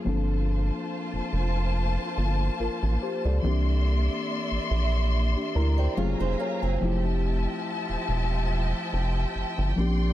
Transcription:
0.04 0.71 G1 loud
0.04 3.39 F3 medium
0.04 3.40 A#3 medium
0.04 5.93 A#3 medium
0.04 3.40 C4 medium
0.04 3.41 D4 medium
0.04 3.40 F4 medium
0.04 3.40 C5 medium
0.04 3.40 A5 medium
0.09 2.57 A4 medium
1.13 1.21 F1 soft
1.33 1.97 F1 medium
2.17 2.50 G1 medium
2.60 2.69 A1 soft
2.60 3.00 F4 medium
2.60 3.00 A#4 medium
2.83 2.97 A1 medium
3.02 3.24 G4 medium
3.02 3.24 C5 medium
3.25 3.39 C#2 medium
3.25 3.65 A4 medium
3.25 3.65 D5 medium
3.42 4.09 C2 loud
3.42 5.92 E3 medium
3.42 5.93 A#3 medium
3.42 5.94 C4 medium
3.42 5.10 D4 medium
3.42 5.95 D5 medium
3.42 5.95 E5 medium
3.42 5.95 C6 medium
3.47 5.11 G4 medium
4.51 4.59 A#1 soft
4.71 5.35 A#1 medium
5.36 5.55 D4 medium
5.36 5.54 G4 medium
5.55 5.87 D2 loud
5.55 5.78 E4 medium
5.55 5.77 A#4 medium
5.55 5.77 A#5 medium
5.78 6.19 G4 medium
5.78 6.18 C5 medium
5.78 5.96 D5 medium
5.78 5.96 G5 medium
5.97 6.15 F#1 loud
5.97 6.81 F#3 medium
5.97 6.04 A3 medium
5.97 6.82 C#4 medium
5.97 6.19 F4 medium
5.97 6.82 F4 medium
5.97 6.83 G#4 medium
5.97 6.19 C#5 medium
5.97 6.81 F5 medium
5.97 6.37 F5 medium
5.97 6.81 G#5 medium
5.97 6.81 A#5 medium
6.04 6.85 A#3 medium
6.20 6.35 F1 medium
6.20 6.39 D#4 medium
6.20 6.39 C5 medium
6.40 6.62 C#4 medium
6.40 6.61 A#4 medium
6.40 6.79 C#5 medium
6.62 6.77 F#1 medium
6.62 7.03 C4 medium
6.62 7.03 G#4 medium
6.80 7.46 F1 loud
6.80 9.73 F3 medium
6.80 9.75 F3 medium
6.80 9.73 A3 medium
6.80 9.74 C4 medium
6.80 9.75 E4 medium
6.80 9.75 E5 medium
6.80 10.13 G5 medium
6.80 9.75 A5 medium
6.85 9.75 G4 medium
7.89 7.97 E1 soft
8.08 8.73 E1 medium
8.93 9.25 F1 medium
9.35 9.44 G1 soft
9.58 9.73 G1 loud
9.76 10.13 A#1 medium
9.76 10.13 F3 medium
9.76 10.13 A#3 medium
9.76 10.13 C4 medium
9.76 9.85 C#4 medium
9.76 10.13 D5 medium
9.76 10.13 C6 medium
9.80 10.13 G4 medium
9.86 10.13 D4 medium

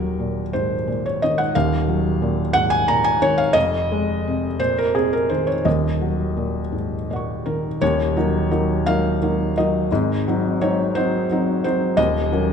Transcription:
0.00 1.50 D#1 medium
0.00 1.50 D#2 medium
0.00 0.40 F#3 soft
0.00 0.53 A#4 medium
0.20 0.74 A#2 soft
0.53 0.88 G#2 soft
0.53 1.04 C5 medium
0.88 1.41 A#2 soft
1.06 1.22 C#5 medium
1.22 1.76 D#3 medium
1.22 1.39 D#5 medium
1.38 1.55 F#5 medium
1.55 3.51 D#1 medium
1.55 3.52 D#2 medium
1.55 2.55 F5 loud
1.88 2.41 F#3 medium
2.22 2.75 A#2 medium
2.53 2.87 G#2 medium
2.53 2.71 F#5 loud
2.70 2.87 G#5 loud
2.88 3.42 A#2 medium
2.88 3.05 A#5 loud
3.04 3.21 G#5 loud
3.22 3.55 D#3 medium
3.22 3.38 C#5 loud
3.38 3.55 F5 loud
3.53 5.61 F1 medium
3.53 5.62 F2 medium
3.53 4.58 D#5 loud
3.92 4.46 G#3 medium
4.27 4.82 C3 medium
4.60 4.95 A#2 medium
4.60 4.77 C5 loud
4.78 4.95 A#4 medium
4.95 5.52 C3 medium
4.95 5.12 G#4 medium
5.13 5.30 A#4 medium
5.29 5.66 D#3 soft
5.29 5.48 C5 medium
5.47 5.65 C#5 medium
5.65 7.76 D#1 medium
5.65 7.77 D#2 medium
5.65 6.73 D#5 medium
6.01 6.59 F#3 soft
6.37 6.95 A#2 soft
6.72 7.09 G#2 soft
7.10 7.67 A#2 soft
7.10 7.78 D#5 soft
7.10 7.79 F#5 soft
7.16 7.80 C#6 soft
7.46 7.81 D#3 soft
7.46 7.81 A#4 medium
7.81 8.15 D#1 medium
7.81 8.16 D#2 medium
7.81 8.86 C#5 loud
8.17 8.48 F#3 medium
8.17 8.48 A#3 medium
8.17 8.48 D#4 medium
8.51 8.82 F#3 medium
8.51 8.83 A#3 medium
8.51 8.83 D#4 medium
8.86 9.17 F#3 medium
8.86 9.17 A#3 medium
8.86 9.18 D#4 medium
8.86 9.55 F5 loud
9.22 9.52 F#3 soft
9.22 9.52 A#3 soft
9.22 9.53 D#4 medium
9.57 9.88 F#3 medium
9.57 9.88 A#3 medium
9.57 9.88 D#4 medium
9.57 10.61 D#5 medium
9.91 10.24 G#1 medium
9.91 10.25 G#2 medium
10.28 10.58 F#3 medium
10.28 10.58 C4 medium
10.28 10.58 D#4 medium
10.61 10.92 F#3 medium
10.61 10.92 C4 soft
10.61 10.92 D#4 medium
10.61 10.95 C#5 medium
10.95 11.26 F#3 medium
10.95 11.26 C4 medium
10.95 11.27 D#4 medium
10.95 11.63 C5 loud
11.31 11.61 F#3 medium
11.31 11.61 C4 medium
11.31 11.61 D#4 medium
11.64 11.95 F#3 medium
11.64 11.95 C4 medium
11.64 11.95 D#4 medium
11.64 11.98 C5 medium
11.97 12.30 D#1 medium
11.97 12.31 D#2 medium
11.97 12.53 D#5 loud
12.32 12.53 F#3 soft
12.32 12.53 A#3 medium
12.32 12.53 C#4 medium

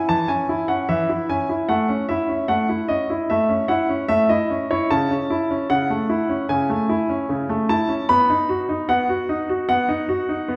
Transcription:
0.00 0.10 E4 soft
0.09 0.29 E3 soft
0.09 0.29 A5 medium
0.28 0.50 C#4 soft
0.28 0.69 G#5 medium
0.49 0.70 E4 soft
0.68 0.90 C#4 soft
0.68 0.89 F#5 medium
0.89 1.09 E3 medium
0.89 1.29 E5 medium
1.09 1.30 E4 soft
1.29 1.51 C#4 soft
1.29 1.53 G#5 medium
1.49 1.69 E4 soft
1.69 1.89 A3 medium
1.69 2.05 F#5 medium
1.89 2.10 C#4 soft
2.09 2.30 E4 soft
2.09 2.49 E5 medium
2.29 2.50 C#4 soft
2.48 2.69 A3 soft
2.48 2.85 F#5 medium
2.69 2.90 E4 soft
2.88 3.10 C#4 soft
2.88 3.13 D#5 medium
3.10 3.31 E4 soft
3.30 3.49 A3 soft
3.30 3.66 E5 medium
3.49 3.70 C#4 soft
3.68 3.90 E4 soft
3.68 4.09 F#5 medium
3.89 4.10 C#4 soft
4.08 4.29 A3 medium
4.08 4.29 E5 medium
4.29 4.51 E4 soft
4.29 4.71 D#5 medium
4.50 4.72 C#4 soft
4.71 4.91 E4 soft
4.71 4.91 C#5 medium
4.91 5.11 C#3 medium
4.91 5.67 A5 medium
5.11 5.32 C#4 soft
5.30 5.52 E4 soft
5.51 5.72 C#4 soft
5.70 5.90 C#3 soft
5.70 6.49 F#5 medium
5.90 6.11 A3 soft
6.09 6.31 E4 soft
6.29 6.51 C#4 soft
6.49 6.69 C#3 medium
6.49 7.69 G#5 medium
6.70 6.91 A3 soft
6.89 7.10 E4 soft
7.09 7.30 C#4 soft
7.29 7.49 C#3 medium
7.49 7.70 A3 soft
7.69 7.91 E4 soft
7.69 8.05 A5 medium
7.89 8.09 C#4 soft
8.09 8.29 B3 medium
8.09 8.57 B5 medium
8.30 8.51 D#4 soft
8.49 8.70 F#4 soft
8.69 8.90 D#4 soft
8.89 9.09 B3 medium
8.89 9.37 F#5 medium
9.09 9.30 F#4 soft
9.29 9.50 D#4 soft
9.49 9.70 F#4 soft
9.69 9.89 B3 medium
9.69 10.56 F#5 medium
9.89 10.10 D#4 medium
10.09 10.30 F#4 medium
10.29 10.50 D#4 soft
10.48 10.56 B3 medium

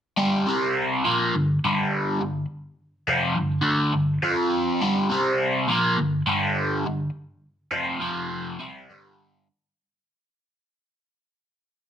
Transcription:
0.17 0.46 G2 medium
0.17 0.46 D3 medium
0.17 0.47 G3 loud
0.46 1.04 C3 medium
0.46 1.05 G3 medium
0.46 1.05 C4 loud
1.04 1.33 A#2 loud
1.04 1.34 F3 medium
1.04 1.34 A#3 loud
1.34 1.57 G2 medium
1.34 1.58 D3 medium
1.65 2.20 G2 medium
1.65 2.20 D3 loud
1.65 2.22 G3 medium
2.21 2.44 G2 medium
2.21 2.45 D3 medium
3.07 3.35 F2 medium
3.07 3.35 C3 loud
3.07 3.37 F3 loud
3.35 3.60 G2 medium
3.35 3.60 D3 medium
3.61 3.92 D3 medium
3.61 3.93 A3 loud
3.61 3.93 D4 loud
3.93 4.17 G2 medium
3.93 4.18 D3 medium
4.23 4.81 F3 loud
4.23 4.81 C4 loud
4.23 4.81 F4 loud
4.81 5.10 G2 loud
4.81 5.09 D3 medium
4.81 5.09 G3 loud
5.09 5.67 C3 loud
5.09 5.68 G3 loud
5.09 5.68 C4 loud
5.68 5.97 A#2 loud
5.68 5.98 F3 loud
5.68 5.98 A#3 loud
5.98 6.21 G2 medium
5.98 6.21 D3 medium
6.27 6.84 G2 loud
6.27 6.85 D3 medium
6.27 6.85 G3 loud
6.86 7.09 G2 medium
6.86 7.09 D3 medium
7.72 7.99 F2 medium
7.72 8.00 C3 loud
7.72 8.01 F3 loud
8.00 8.58 F2 medium
8.00 8.57 C3 loud
8.00 8.59 F3 loud
8.59 8.87 C3 medium
8.59 8.88 G3 loud
8.59 8.89 C4 medium
8.89 9.46 G2 medium
8.89 9.47 D3 loud
8.89 9.47 G3 loud

